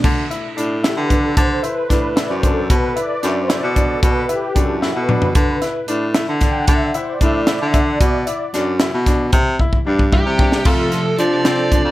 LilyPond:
<<
  \new Staff \with { instrumentName = "Analog synth pad" } { \time 5/8 \key b \phrygian \tempo 4 = 113 r4. g'16 b'16 a'8 | c''8 b'4 d''16 c''16 a'8 | b'8 d''8 e''16 c''16 d''8. a'16 | b'8 g'8 a'16 e'16 fis'16 b'8.~ |
b'8. r4 r16 g''16 fis''16 | e''16 d''16 c''16 d''16 e''16 d''8 e''16 fis''16 d''16~ | d''8. r4. r16 | r2 r8 |
<c f a'>2~ <c f a'>8 | }
  \new Staff \with { instrumentName = "Lead electric guitar" } { \time 5/8 \key b \phrygian r2 r8 | r2 r8 | r2 r8 | r2 r8 |
r2 r8 | r2 r8 | r2 r8 | r4. g'4 |
a'4 d''4. | }
  \new Staff \with { instrumentName = "Grand piano" } { \time 5/8 \key b \phrygian r8 e'8 d'8 e'8 d'8 | r8 e'8 d'8 e'8 d'8 | r8 e'8 d'8 e'8 d'8 | r8 e'8 d'8 e'8 d'8 |
r8 e'8 d'8 e'8 d'8 | r8 e'8 d'8 e'8 d'8 | r8 e'8 d'8 e'8 d'8 | r8 e'8 d'8 e'8 d'8 |
f'4 d'8 c'8 d'8 | }
  \new Staff \with { instrumentName = "Trombone" } { \time 5/8 \key b \phrygian r2 r8 | r2 r8 | r2 r8 | r2 r8 |
r2 r8 | r2 r8 | r2 r8 | r4. g4 |
a4 d'4. | }
  \new Staff \with { instrumentName = "Baritone saxophone" } { \clef bass \time 5/8 \key b \phrygian d8 r8 a,8. d8. | d8 r8 a,8. fis,8. | b,8 r8 fis,8. b,8. | b,8 r8 fis,8. b,8. |
d8 r8 a,8. d8. | d8 r8 a,8. d8. | b,8 r8 fis,8. b,8. | c8 r8 g,8. c8. |
f,8 r8 f4~ f16 f,16 | }
  \new DrumStaff \with { instrumentName = "Drums" } \drummode { \time 5/8 <cymc bd>8 hh8 hh8 <hh sn>8 <hh bd>8 | <hh bd>8 hh8 <hh bd sn>8 <hh sn>8 <hh bd>8 | <hh bd>8 hh8 <hh sn>8 <hh sn>8 <hh bd>8 | <hh bd>8 hh8 <hh bd>8 sn8 toml16 tomfh16 |
<hh bd>8 <hh sn>8 hh8 <hh sn>8 <hh bd sn>8 | <hh bd>8 hh8 <hh bd>8 <hh sn>8 <hh bd>8 | <hh bd>8 hh8 <hh sn>8 <hh sn>8 <hh bd sn>8 | <hh bd>8 bd16 bd8 bd16 bd8 bd16 sn16 |
<cymc bd>8 <hh sn>8 hh8 <hh sn>8 <hh bd>8 | }
>>